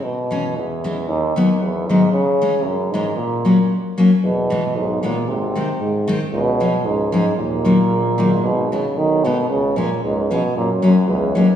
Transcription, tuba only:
X:1
M:2/4
L:1/8
Q:1/4=114
K:C#dor
V:1 name="Tuba" clef=bass
z4 | z4 | z4 | z4 |
E,,2 B,,,2 | G,,,2 G,,2 | C,,2 C,,2 | D,,2 A,,, G,,, |
G,,,2 B,,,2 | C,,2 C,,2 | F,,2 C,,2 |]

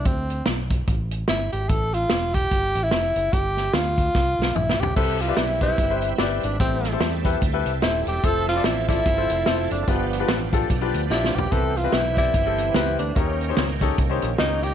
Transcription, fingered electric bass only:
X:1
M:4/4
L:1/8
Q:"Swing" 1/4=147
K:C
V:1 name="Fingered electric bass" clef=bass
D,,2 B,,,2 A,,,2 G,,, _A,,, | A,,,2 E,,,2 G,,, A,,, F,,, ^F,,, | G,,,2 D,,2 C,, B,,, _B,,, =B,,, | C,,2 B,,,2 G,,,2 G,,, _A,,, |
A,,,2 E,,2 D,, C,, _E,,, =E,,, | F,,,2 A,,,2 G,,, F,,, F,,, ^F,,, | G,,,2 A,,,2 B,,, D,, _B,,, =B,,, | C,,2 B,,,2 G,,,2 _D,, =D,, |
_E,,2 _D,,2 C,, _B,,, D,,2 |]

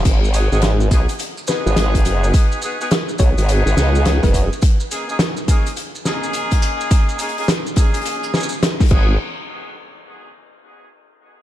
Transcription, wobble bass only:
X:1
M:4/4
L:1/16
Q:"Swing 16ths" 1/4=105
K:G#m
V:1 name="Wobble bass" clef=bass
G,,,3 G,,,3 B,,, z4 G,,,3 F,,,2 | z6 B,,, G,,,2 G,,, C,,3 F,,,2 z | z16 | z12 z2 G,,,2 |
z16 |]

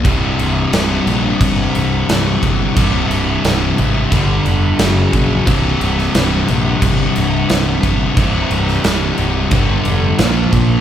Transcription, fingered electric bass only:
X:1
M:4/4
L:1/8
Q:1/4=89
K:Gphr
V:1 name="Fingered electric bass" clef=bass
C,,, C,,, C,,, B,,, G,,, C,,, C,,, G,,, | C,,, C,,, C,,, A,,, G,,, F,,, ^F,,, B,,, | C,,, C,,, C,,, B,,, G,,, C,,, C,,, G,,, | C,,, C,,, C,,, C,,, G,,, F,,, B,,, B,,, |]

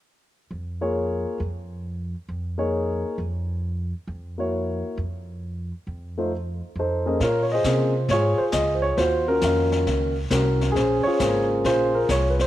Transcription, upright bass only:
X:1
M:4/4
L:1/8
Q:"Swing" 1/4=135
K:Bbm
V:1 name="Upright bass" clef=bass
z2 F,,3 z F,,2- | F,, z F,,3 z F,,2- | F,, z F,,3 z F,,2- | F,, z F,,3 z F,,2 |
B,,2 C,2 A,, z D,,2 | E,,2 F,,2 D,,2 C,,2 | B,,, z A,,,2 B,,,2 C,,2 |]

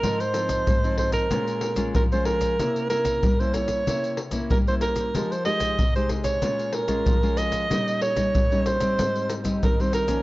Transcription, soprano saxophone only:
X:1
M:4/4
L:1/16
Q:1/4=94
K:Fm
V:1 name="Soprano saxophone"
B c4- c c B4- B B c B2- | B2 B3 c d4 z2 B c B2- | B c e3 c2 d3 B4 e2- | e2 d4 c4 z2 B c B2 |]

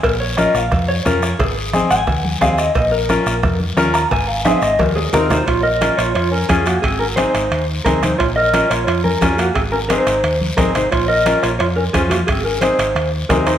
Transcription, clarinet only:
X:1
M:4/4
L:1/8
Q:1/4=176
K:Bbm
V:1 name="Clarinet"
z8 | z8 | z8 | z6 E E |
F B2 F F D D B, | C D E3 z E E | F B2 F F D D B, | C D E3 z E E |
F B2 F F D D B, | C D E3 z E E |]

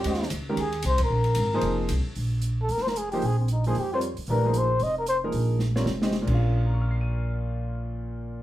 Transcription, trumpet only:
X:1
M:4/4
L:1/8
Q:"Swing" 1/4=227
K:Bbdor
V:1 name="Trumpet"
G2 z2 A2 c B- | B6 z2 | z3 =A (3B c B _A G | A C E A G c z2 |
B2 c2 e B c z | z8 | z8 | z8 |]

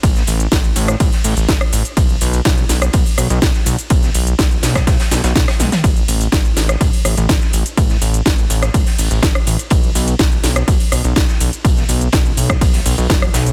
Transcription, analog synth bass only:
X:1
M:4/4
L:1/16
Q:1/4=124
K:Bphr
V:1 name="Analog synth bass" clef=bass
A,,,2 A,,,2 A,,,2 A,,,2 A,,, z A,,, A,,, A,,, z A,,, z | B,,,2 B,,,2 B,,,2 B,,,2 B,,, z B,,, B,,, B,,, z B,,, z | B,,,2 B,,,2 B,,,2 B,,,2 B,,, z B,,, B,,, B,,, z B,,, z | A,,,2 A,,,2 A,,,2 A,,,2 A,,, z A,,, A,,, A,,, z A,,, z |
A,,,2 A,,,2 A,,,2 A,,,2 A,,, z A,,, A,,, A,,, z A,,, z | B,,,2 B,,,2 B,,,2 B,,,2 B,,, z B,,, B,,, B,,, z B,,, z | B,,,2 B,,,2 B,,,2 B,,,2 B,,,2 B,,, B,,, F,,,2 B,,,2 |]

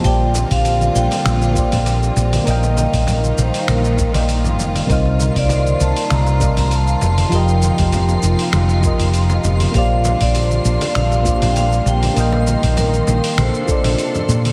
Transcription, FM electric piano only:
X:1
M:4/4
L:1/16
Q:"Swing 16ths" 1/4=99
K:Bb
V:1 name="FM electric piano"
[B,FGcd]8- [B,FGcd]2 [B,FGcd]6 | [B,Befg]8- [B,Befg]2 z [B,Bdefg]4- [B,Bdefg] | [C,G,EBcf]8- [C,G,EBcf]2 [C,G,Bdef]4 z2 | [F,FGBe]8- [F,FGBe]2 [F,FGBe]6 |
[B,FGcd]8- [B,FGcd]2 [B,FGcd]6 | [B,Befg]8 z2 [B,FAcd]6 |]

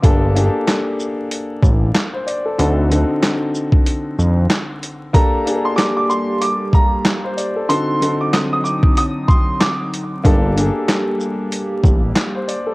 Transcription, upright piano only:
X:1
M:4/4
L:1/16
Q:"Swing 16ths" 1/4=94
K:Gm
V:1 name="Upright piano"
z16 | z16 | b3 c' d' d' c'2 d'2 b2 z4 | c'3 d' e' e' d'2 e'2 c'2 d'2 z2 |
z16 |]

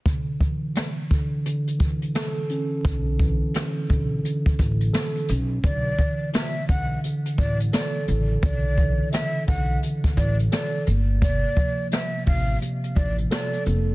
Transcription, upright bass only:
X:1
M:4/4
L:1/8
Q:"Swing 16ths" 1/4=86
K:Bm
V:1 name="Upright bass" clef=bass
z8 | B,,,2 z B,,, z A,,, z B,,, | B,,, z2 B,,, z A,,, z A,,, | B,,,2 z B,,, z A,,, z G,,,- |
G,,, z2 A,,, z A,,, z =F,,, |]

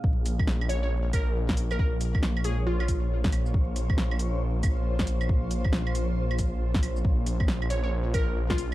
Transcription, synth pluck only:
X:1
M:4/4
L:1/16
Q:"Swing 16ths" 1/4=137
K:Db
V:1 name="Synth pluck"
z6 d d z2 B2 z3 B | B z4 z A2 F F z6 | z16 | z16 |
z6 d d z2 B2 z F2 z |]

